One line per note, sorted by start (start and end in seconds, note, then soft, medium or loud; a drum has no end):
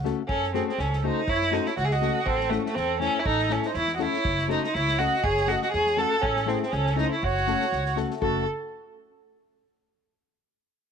0.04 0.21 A3 medium
0.04 0.21 C#4 medium
0.04 0.22 F#4 medium
0.04 0.22 A4 medium
0.04 snare soft
0.28 0.59 F#2 medium
0.28 0.51 C#4 loud
0.28 0.52 A4 medium
0.28 kick medium
0.43 snare soft
0.53 0.71 A3 medium
0.53 0.67 C4 medium
0.53 0.71 C#4 medium
0.53 0.71 F#4 medium
0.53 0.66 G#4 medium
0.53 0.71 A4 medium
0.53 snare soft
0.68 0.81 C4 medium
0.68 0.78 G#4 medium
0.68 snare soft
0.78 1.08 C#2 loud
0.78 1.04 C#4 medium
0.78 1.04 A4 medium
0.78 snare soft
0.93 snare soft
1.03 1.20 A3 medium
1.03 1.20 C#4 medium
1.03 1.30 D#4 loud
1.03 1.21 F#4 medium
1.03 1.21 A4 medium
1.03 1.26 C5 medium
1.27 1.57 F#2 medium
1.27 1.54 E4 loud
1.27 1.53 C#5 loud
1.27 kick medium
1.42 snare soft
1.51 1.69 A3 medium
1.51 1.69 C#4 medium
1.51 1.68 D#4 loud
1.51 1.69 F#4 medium
1.51 1.70 A4 medium
1.51 1.66 C5 medium
1.51 snare soft
1.66 1.77 E4 loud
1.66 1.74 C#5 medium
1.66 snare soft
1.76 2.07 C#2 loud
1.76 1.86 F#4 loud
1.76 1.84 C#5 medium
1.76 snare soft
1.83 1.94 G#4 medium
1.83 1.92 E5 medium
1.91 2.27 F#4 medium
1.91 2.26 D#5 loud
1.91 snare soft
2.01 2.18 A3 medium
2.01 2.18 C#4 medium
2.01 2.19 F#4 medium
2.01 2.19 A4 medium
2.01 snare soft
2.26 2.56 A1 loud
2.26 2.51 C4 loud
2.26 2.51 A4 loud
2.26 kick medium
2.40 snare soft
2.49 2.63 A3 medium
2.49 2.68 A3 medium
2.49 2.68 C#4 medium
2.49 2.68 E4 medium
2.49 2.63 F#4 medium
2.49 2.68 A4 medium
2.49 snare soft
2.64 2.76 A3 medium
2.64 2.75 F#4 medium
2.64 snare soft
2.75 3.06 E2 loud
2.75 2.99 C4 loud
2.75 2.99 A4 loud
2.75 snare soft
2.99 3.17 A3 medium
2.99 3.21 C#4 loud
2.99 3.17 C#4 medium
2.99 3.18 E4 medium
2.99 3.19 A4 medium
2.99 3.18 A4 medium
2.99 snare soft
3.20 3.27 E4 medium
3.20 3.26 C#5 medium
3.26 3.55 A1 medium
3.26 3.54 D#4 loud
3.26 3.49 A4 loud
3.26 kick medium
3.39 snare soft
3.49 3.67 A3 medium
3.49 3.67 C#4 medium
3.49 3.68 C#4 medium
3.49 3.67 E4 medium
3.49 3.65 A4 medium
3.49 3.68 A4 medium
3.49 snare soft
3.63 3.76 D#4 loud
3.63 3.76 C5 medium
3.63 snare soft
3.74 4.05 E2 loud
3.74 3.93 E4 loud
3.74 3.92 C#5 medium
3.74 snare soft
3.88 snare soft
3.94 4.04 F#4 medium
3.94 4.00 D#5 medium
3.98 4.16 A3 medium
3.98 4.16 C#4 medium
3.98 4.16 E4 medium
3.98 4.17 A4 medium
3.98 4.50 C#5 medium
3.98 snare soft
4.03 4.51 E4 loud
4.14 snare soft
4.25 4.55 F#1 loud
4.25 kick medium
4.39 snare soft
4.48 4.65 A3 medium
4.48 4.66 C#4 medium
4.48 4.63 D#4 loud
4.48 4.66 F#4 medium
4.48 4.66 A4 medium
4.48 4.62 C5 medium
4.48 snare soft
4.64 4.76 D#4 medium
4.64 4.74 C5 medium
4.64 snare soft
4.74 5.04 C#2 loud
4.74 5.00 E4 loud
4.74 5.00 C#5 medium
4.74 snare soft
4.88 snare soft
4.98 5.15 A3 medium
4.98 5.16 C#4 medium
4.98 5.25 F#4 loud
4.98 5.16 F#4 medium
4.98 5.16 A4 medium
4.98 5.24 D#5 medium
4.98 snare soft
5.24 5.54 F#1 loud
5.24 5.50 G#4 loud
5.24 5.49 C#5 loud
5.24 kick loud
5.37 snare soft
5.46 5.64 A3 medium
5.46 5.65 C#4 medium
5.46 5.65 F#4 medium
5.46 5.62 F#4 loud
5.46 5.65 A4 medium
5.46 snare soft
5.51 5.62 D#5 medium
5.62 5.72 F#4 loud
5.62 5.73 D#5 medium
5.62 snare soft
5.72 6.03 E2 loud
5.72 6.00 G#4 loud
5.72 5.97 C#5 medium
5.72 snare soft
5.86 snare soft
5.97 6.14 A3 medium
5.97 6.14 C#4 medium
5.97 6.15 F#4 medium
5.97 6.23 A4 loud
5.97 6.15 A4 medium
5.97 6.24 F#5 medium
5.97 snare soft
6.22 6.53 A1 loud
6.22 6.49 C#4 loud
6.22 kick medium
6.27 6.50 A4 loud
6.36 snare soft
6.46 6.64 A3 medium
6.46 6.62 C4 loud
6.46 6.64 C#4 medium
6.46 6.64 E4 medium
6.46 6.64 A4 medium
6.46 snare soft
6.52 6.64 G#4 medium
6.63 6.74 C4 medium
6.63 6.75 G#4 medium
6.63 snare soft
6.72 7.03 C#2 loud
6.72 6.97 C#4 loud
6.72 snare soft
6.77 7.00 A4 loud
6.86 snare soft
6.96 7.13 A3 medium
6.96 7.14 C#4 medium
6.96 7.10 D#4 loud
6.96 7.14 E4 medium
6.96 7.14 A4 medium
6.96 snare soft
7.01 7.12 C5 medium
7.12 7.25 E4 medium
7.12 7.23 C#5 medium
7.22 7.52 F#1 loud
7.22 7.97 F#4 loud
7.22 7.98 C#5 loud
7.22 kick medium
7.37 snare soft
7.47 7.64 A3 medium
7.47 7.64 C#4 medium
7.47 7.64 F#4 medium
7.47 7.65 A4 medium
7.47 snare soft
7.61 snare soft
7.72 8.02 C#2 loud
7.72 snare soft
7.86 snare soft
7.96 8.13 A3 medium
7.96 8.13 C#4 medium
7.96 8.14 F#4 medium
7.96 8.14 A4 medium
7.96 snare soft
8.10 snare soft
8.21 8.44 F#1 medium
8.21 8.45 A3 medium
8.21 8.45 C#4 medium
8.21 8.45 F#4 medium
8.21 8.45 A4 medium
8.21 kick medium